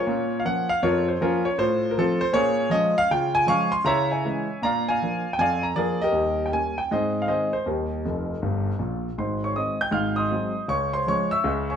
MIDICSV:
0, 0, Header, 1, 2, 480
1, 0, Start_track
1, 0, Tempo, 379747
1, 78, Time_signature, 4, 2, 24, 8
1, 14867, End_track
2, 0, Start_track
2, 0, Title_t, "Grand piano"
2, 0, Program_c, 0, 0
2, 0, Note_on_c, 0, 65, 64
2, 0, Note_on_c, 0, 70, 60
2, 0, Note_on_c, 0, 73, 87
2, 86, Note_on_c, 0, 46, 88
2, 111, Note_on_c, 0, 61, 57
2, 326, Control_c, 0, 64, 127
2, 367, Note_off_c, 0, 61, 0
2, 452, Note_off_c, 0, 70, 0
2, 456, Note_off_c, 0, 65, 0
2, 484, Note_off_c, 0, 73, 0
2, 492, Note_off_c, 0, 46, 0
2, 501, Note_on_c, 0, 77, 78
2, 568, Note_on_c, 0, 61, 54
2, 569, Control_c, 0, 64, 0
2, 569, Note_on_c, 0, 58, 52
2, 571, Note_on_c, 0, 53, 52
2, 572, Note_off_c, 0, 77, 0
2, 578, Note_on_c, 0, 78, 103
2, 830, Note_off_c, 0, 61, 0
2, 831, Note_off_c, 0, 58, 0
2, 832, Note_off_c, 0, 53, 0
2, 878, Note_on_c, 0, 77, 104
2, 881, Note_off_c, 0, 78, 0
2, 1043, Note_on_c, 0, 41, 81
2, 1044, Note_off_c, 0, 77, 0
2, 1048, Note_on_c, 0, 73, 101
2, 1064, Note_on_c, 0, 65, 86
2, 1065, Note_on_c, 0, 70, 82
2, 1343, Note_off_c, 0, 65, 0
2, 1344, Note_off_c, 0, 70, 0
2, 1356, Note_off_c, 0, 73, 0
2, 1368, Note_on_c, 0, 72, 72
2, 1451, Note_off_c, 0, 41, 0
2, 1526, Note_on_c, 0, 58, 55
2, 1529, Note_off_c, 0, 72, 0
2, 1529, Note_on_c, 0, 53, 58
2, 1540, Note_on_c, 0, 70, 97
2, 1545, Note_on_c, 0, 61, 87
2, 1548, Note_on_c, 0, 65, 89
2, 1789, Note_off_c, 0, 58, 0
2, 1792, Note_off_c, 0, 53, 0
2, 1824, Note_off_c, 0, 61, 0
2, 1826, Note_off_c, 0, 65, 0
2, 1834, Note_on_c, 0, 73, 98
2, 1843, Note_off_c, 0, 70, 0
2, 1999, Note_on_c, 0, 45, 77
2, 2003, Note_off_c, 0, 73, 0
2, 2008, Note_on_c, 0, 72, 100
2, 2021, Note_on_c, 0, 65, 67
2, 2022, Note_on_c, 0, 69, 65
2, 2245, Control_c, 0, 64, 127
2, 2380, Note_off_c, 0, 65, 0
2, 2381, Note_off_c, 0, 69, 0
2, 2401, Note_off_c, 0, 72, 0
2, 2409, Note_off_c, 0, 45, 0
2, 2414, Note_on_c, 0, 70, 79
2, 2491, Note_off_c, 0, 70, 0
2, 2496, Control_c, 0, 64, 0
2, 2501, Note_on_c, 0, 53, 60
2, 2505, Note_on_c, 0, 57, 61
2, 2512, Note_on_c, 0, 69, 104
2, 2524, Note_on_c, 0, 60, 72
2, 2532, Note_on_c, 0, 65, 73
2, 2760, Note_off_c, 0, 53, 0
2, 2763, Note_off_c, 0, 57, 0
2, 2791, Note_on_c, 0, 72, 107
2, 2795, Note_off_c, 0, 60, 0
2, 2799, Note_off_c, 0, 65, 0
2, 2809, Note_off_c, 0, 69, 0
2, 2945, Note_on_c, 0, 46, 94
2, 2953, Note_on_c, 0, 73, 115
2, 2962, Note_off_c, 0, 72, 0
2, 2965, Note_on_c, 0, 70, 75
2, 2966, Note_on_c, 0, 61, 60
2, 2967, Note_on_c, 0, 68, 89
2, 3205, Control_c, 0, 64, 127
2, 3230, Note_off_c, 0, 61, 0
2, 3361, Note_off_c, 0, 46, 0
2, 3410, Note_on_c, 0, 53, 61
2, 3411, Note_off_c, 0, 70, 0
2, 3412, Note_off_c, 0, 68, 0
2, 3428, Note_on_c, 0, 56, 56
2, 3428, Note_on_c, 0, 75, 111
2, 3434, Note_on_c, 0, 61, 68
2, 3438, Note_off_c, 0, 73, 0
2, 3457, Control_c, 0, 64, 0
2, 3683, Note_off_c, 0, 53, 0
2, 3696, Note_off_c, 0, 56, 0
2, 3701, Note_off_c, 0, 61, 0
2, 3748, Note_off_c, 0, 75, 0
2, 3765, Note_on_c, 0, 77, 119
2, 3929, Note_off_c, 0, 77, 0
2, 3931, Note_on_c, 0, 49, 76
2, 3935, Note_on_c, 0, 79, 107
2, 3946, Note_on_c, 0, 65, 60
2, 4159, Control_c, 0, 64, 127
2, 4204, Note_off_c, 0, 65, 0
2, 4230, Note_on_c, 0, 80, 115
2, 4241, Note_off_c, 0, 79, 0
2, 4336, Note_off_c, 0, 49, 0
2, 4377, Note_on_c, 0, 56, 54
2, 4383, Note_on_c, 0, 53, 56
2, 4389, Note_on_c, 0, 61, 56
2, 4390, Note_off_c, 0, 80, 0
2, 4399, Note_on_c, 0, 85, 119
2, 4409, Note_on_c, 0, 80, 91
2, 4416, Note_on_c, 0, 77, 87
2, 4418, Control_c, 0, 64, 0
2, 4648, Note_off_c, 0, 56, 0
2, 4653, Note_off_c, 0, 53, 0
2, 4657, Note_off_c, 0, 61, 0
2, 4696, Note_off_c, 0, 80, 0
2, 4699, Note_on_c, 0, 84, 101
2, 4700, Note_off_c, 0, 77, 0
2, 4713, Note_off_c, 0, 85, 0
2, 4859, Note_on_c, 0, 49, 92
2, 4875, Note_on_c, 0, 82, 115
2, 4876, Note_off_c, 0, 84, 0
2, 4886, Note_on_c, 0, 64, 62
2, 4892, Note_on_c, 0, 76, 103
2, 4893, Note_on_c, 0, 73, 97
2, 5107, Control_c, 0, 64, 127
2, 5150, Note_off_c, 0, 64, 0
2, 5178, Note_off_c, 0, 76, 0
2, 5179, Note_off_c, 0, 73, 0
2, 5191, Note_off_c, 0, 82, 0
2, 5201, Note_on_c, 0, 80, 69
2, 5209, Note_on_c, 0, 76, 66
2, 5212, Note_on_c, 0, 73, 64
2, 5278, Note_off_c, 0, 49, 0
2, 5365, Note_on_c, 0, 56, 56
2, 5366, Note_on_c, 0, 52, 58
2, 5382, Control_c, 0, 64, 0
2, 5386, Note_on_c, 0, 61, 54
2, 5629, Note_off_c, 0, 52, 0
2, 5629, Note_off_c, 0, 56, 0
2, 5644, Note_off_c, 0, 61, 0
2, 5806, Note_off_c, 0, 76, 0
2, 5807, Note_off_c, 0, 73, 0
2, 5845, Note_on_c, 0, 46, 83
2, 5847, Note_off_c, 0, 80, 0
2, 5855, Note_on_c, 0, 82, 109
2, 5870, Note_on_c, 0, 62, 58
2, 5874, Note_on_c, 0, 74, 87
2, 5877, Note_on_c, 0, 77, 79
2, 6078, Control_c, 0, 64, 127
2, 6127, Note_off_c, 0, 62, 0
2, 6149, Note_off_c, 0, 74, 0
2, 6151, Note_off_c, 0, 77, 0
2, 6161, Note_off_c, 0, 82, 0
2, 6175, Note_on_c, 0, 80, 101
2, 6199, Note_on_c, 0, 74, 76
2, 6199, Note_on_c, 0, 77, 73
2, 6252, Note_off_c, 0, 46, 0
2, 6341, Control_c, 0, 64, 0
2, 6351, Note_on_c, 0, 53, 45
2, 6361, Note_on_c, 0, 58, 49
2, 6364, Note_on_c, 0, 62, 56
2, 6608, Note_off_c, 0, 53, 0
2, 6615, Note_off_c, 0, 58, 0
2, 6617, Note_off_c, 0, 62, 0
2, 6703, Note_off_c, 0, 74, 0
2, 6703, Note_off_c, 0, 77, 0
2, 6729, Note_off_c, 0, 80, 0
2, 6740, Note_on_c, 0, 79, 91
2, 6806, Note_on_c, 0, 41, 72
2, 6814, Note_off_c, 0, 79, 0
2, 6814, Note_on_c, 0, 80, 111
2, 6835, Note_on_c, 0, 74, 92
2, 6842, Note_on_c, 0, 77, 75
2, 7109, Note_off_c, 0, 74, 0
2, 7113, Note_off_c, 0, 77, 0
2, 7116, Note_on_c, 0, 82, 84
2, 7120, Note_off_c, 0, 80, 0
2, 7213, Note_off_c, 0, 41, 0
2, 7278, Note_on_c, 0, 53, 52
2, 7280, Note_on_c, 0, 74, 105
2, 7283, Note_off_c, 0, 82, 0
2, 7286, Note_on_c, 0, 58, 46
2, 7294, Note_on_c, 0, 62, 60
2, 7303, Note_on_c, 0, 70, 84
2, 7308, Note_on_c, 0, 68, 80
2, 7543, Note_off_c, 0, 53, 0
2, 7549, Note_off_c, 0, 58, 0
2, 7555, Note_off_c, 0, 62, 0
2, 7583, Note_off_c, 0, 70, 0
2, 7585, Note_off_c, 0, 68, 0
2, 7592, Note_off_c, 0, 74, 0
2, 7604, Note_on_c, 0, 75, 103
2, 7626, Note_on_c, 0, 67, 77
2, 7637, Note_on_c, 0, 70, 79
2, 7734, Note_on_c, 0, 39, 64
2, 7756, Note_on_c, 0, 55, 47
2, 8002, Control_c, 0, 64, 127
2, 8021, Note_off_c, 0, 55, 0
2, 8135, Note_off_c, 0, 67, 0
2, 8141, Note_off_c, 0, 70, 0
2, 8153, Note_off_c, 0, 39, 0
2, 8161, Note_on_c, 0, 79, 76
2, 8162, Note_off_c, 0, 75, 0
2, 8234, Note_on_c, 0, 55, 44
2, 8243, Note_off_c, 0, 79, 0
2, 8246, Note_on_c, 0, 61, 48
2, 8247, Note_on_c, 0, 58, 42
2, 8252, Control_c, 0, 64, 0
2, 8257, Note_on_c, 0, 80, 93
2, 8500, Note_off_c, 0, 55, 0
2, 8508, Note_off_c, 0, 61, 0
2, 8509, Note_off_c, 0, 58, 0
2, 8560, Note_off_c, 0, 80, 0
2, 8568, Note_on_c, 0, 79, 90
2, 8729, Note_off_c, 0, 79, 0
2, 8737, Note_on_c, 0, 44, 74
2, 8747, Note_on_c, 0, 75, 89
2, 8760, Note_on_c, 0, 60, 52
2, 8763, Note_on_c, 0, 72, 71
2, 8764, Note_on_c, 0, 68, 64
2, 8941, Control_c, 0, 64, 127
2, 9013, Note_off_c, 0, 60, 0
2, 9111, Note_off_c, 0, 68, 0
2, 9111, Note_off_c, 0, 72, 0
2, 9124, Note_on_c, 0, 77, 77
2, 9129, Note_off_c, 0, 75, 0
2, 9138, Note_off_c, 0, 44, 0
2, 9192, Note_on_c, 0, 51, 43
2, 9199, Note_on_c, 0, 60, 48
2, 9203, Note_on_c, 0, 56, 40
2, 9203, Note_on_c, 0, 75, 86
2, 9204, Note_off_c, 0, 77, 0
2, 9210, Control_c, 0, 64, 0
2, 9216, Note_on_c, 0, 72, 71
2, 9223, Note_on_c, 0, 68, 67
2, 9457, Note_off_c, 0, 51, 0
2, 9462, Note_off_c, 0, 60, 0
2, 9466, Note_off_c, 0, 56, 0
2, 9498, Note_off_c, 0, 72, 0
2, 9501, Note_off_c, 0, 68, 0
2, 9512, Note_off_c, 0, 75, 0
2, 9518, Note_on_c, 0, 72, 83
2, 9679, Note_on_c, 0, 39, 61
2, 9683, Note_off_c, 0, 72, 0
2, 9699, Note_on_c, 0, 70, 58
2, 9700, Note_on_c, 0, 67, 49
2, 9711, Note_on_c, 0, 63, 54
2, 9714, Note_on_c, 0, 55, 38
2, 9913, Control_c, 0, 64, 127
2, 9968, Note_off_c, 0, 55, 0
2, 10086, Note_off_c, 0, 39, 0
2, 10172, Control_c, 0, 64, 0
2, 10175, Note_on_c, 0, 29, 64
2, 10178, Note_on_c, 0, 41, 55
2, 10528, Note_off_c, 0, 29, 0
2, 10530, Note_off_c, 0, 41, 0
2, 10644, Note_on_c, 0, 31, 69
2, 10650, Note_on_c, 0, 43, 62
2, 11002, Note_off_c, 0, 31, 0
2, 11005, Note_off_c, 0, 43, 0
2, 11077, Note_off_c, 0, 67, 0
2, 11083, Note_off_c, 0, 63, 0
2, 11109, Note_on_c, 0, 46, 61
2, 11111, Note_on_c, 0, 34, 59
2, 11127, Note_off_c, 0, 70, 0
2, 11472, Note_off_c, 0, 46, 0
2, 11473, Note_off_c, 0, 34, 0
2, 11603, Note_on_c, 0, 32, 53
2, 11606, Note_on_c, 0, 44, 64
2, 11610, Note_on_c, 0, 84, 64
2, 11628, Note_on_c, 0, 72, 53
2, 11834, Control_c, 0, 64, 127
2, 11903, Note_off_c, 0, 72, 0
2, 11915, Note_off_c, 0, 84, 0
2, 11934, Note_on_c, 0, 85, 83
2, 11949, Note_on_c, 0, 73, 55
2, 12008, Note_off_c, 0, 32, 0
2, 12010, Note_off_c, 0, 44, 0
2, 12067, Note_on_c, 0, 51, 38
2, 12079, Note_on_c, 0, 56, 41
2, 12083, Note_on_c, 0, 87, 74
2, 12084, Note_on_c, 0, 60, 46
2, 12087, Note_off_c, 0, 73, 0
2, 12089, Note_off_c, 0, 85, 0
2, 12092, Control_c, 0, 64, 0
2, 12102, Note_on_c, 0, 75, 66
2, 12333, Note_off_c, 0, 51, 0
2, 12342, Note_off_c, 0, 56, 0
2, 12346, Note_off_c, 0, 60, 0
2, 12379, Note_off_c, 0, 75, 0
2, 12391, Note_off_c, 0, 87, 0
2, 12400, Note_on_c, 0, 91, 89
2, 12414, Note_on_c, 0, 79, 61
2, 12530, Note_on_c, 0, 32, 64
2, 12530, Note_on_c, 0, 44, 81
2, 12543, Note_on_c, 0, 89, 86
2, 12559, Note_off_c, 0, 79, 0
2, 12562, Note_off_c, 0, 91, 0
2, 12564, Note_on_c, 0, 77, 62
2, 12801, Control_c, 0, 64, 127
2, 12843, Note_on_c, 0, 87, 85
2, 12850, Note_off_c, 0, 77, 0
2, 12861, Note_off_c, 0, 89, 0
2, 12865, Note_on_c, 0, 84, 48
2, 12869, Note_on_c, 0, 75, 58
2, 12949, Note_off_c, 0, 32, 0
2, 12949, Note_off_c, 0, 44, 0
2, 13028, Note_on_c, 0, 56, 47
2, 13029, Note_on_c, 0, 54, 45
2, 13033, Note_on_c, 0, 60, 50
2, 13048, Control_c, 0, 64, 0
2, 13294, Note_off_c, 0, 56, 0
2, 13295, Note_off_c, 0, 54, 0
2, 13298, Note_off_c, 0, 60, 0
2, 13470, Note_off_c, 0, 84, 0
2, 13472, Note_off_c, 0, 75, 0
2, 13500, Note_on_c, 0, 49, 69
2, 13504, Note_off_c, 0, 87, 0
2, 13507, Note_on_c, 0, 37, 59
2, 13512, Note_on_c, 0, 85, 97
2, 13524, Note_on_c, 0, 73, 70
2, 13731, Control_c, 0, 64, 127
2, 13810, Note_off_c, 0, 73, 0
2, 13821, Note_on_c, 0, 84, 86
2, 13826, Note_off_c, 0, 85, 0
2, 13840, Note_on_c, 0, 72, 60
2, 13915, Note_off_c, 0, 49, 0
2, 13919, Note_off_c, 0, 37, 0
2, 13988, Note_on_c, 0, 53, 44
2, 13991, Note_off_c, 0, 72, 0
2, 13993, Note_off_c, 0, 84, 0
2, 13998, Note_on_c, 0, 56, 58
2, 14008, Note_on_c, 0, 61, 47
2, 14009, Note_on_c, 0, 85, 96
2, 14013, Control_c, 0, 64, 0
2, 14015, Note_on_c, 0, 73, 79
2, 14255, Note_off_c, 0, 53, 0
2, 14261, Note_off_c, 0, 56, 0
2, 14268, Note_off_c, 0, 61, 0
2, 14296, Note_off_c, 0, 73, 0
2, 14298, Note_off_c, 0, 85, 0
2, 14299, Note_on_c, 0, 88, 101
2, 14315, Note_on_c, 0, 76, 71
2, 14317, Note_on_c, 0, 85, 73
2, 14459, Note_on_c, 0, 37, 82
2, 14459, Note_on_c, 0, 49, 88
2, 14719, Control_c, 0, 64, 127
2, 14758, Note_off_c, 0, 76, 0
2, 14759, Note_off_c, 0, 85, 0
2, 14783, Note_off_c, 0, 88, 0
2, 14788, Note_on_c, 0, 85, 75
2, 14797, Note_on_c, 0, 80, 51
2, 14804, Note_on_c, 0, 73, 55
2, 14867, Note_off_c, 0, 37, 0
2, 14867, Note_off_c, 0, 49, 0
2, 14867, Note_off_c, 0, 73, 0
2, 14867, Note_off_c, 0, 80, 0
2, 14867, Note_off_c, 0, 85, 0
2, 14867, End_track
0, 0, End_of_file